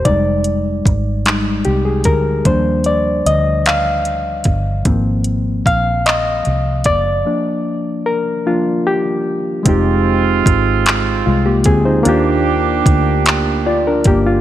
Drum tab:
HH |xxxxxx|xxxxxx|xxxxxx|------|
CP |---x--|---x--|---x--|------|
BD |o-o--o|o----o|o-o--o|------|

HH |x-xx-x|x-xx-x|
CP |---x--|---x--|
BD |o-o--o|--o--o|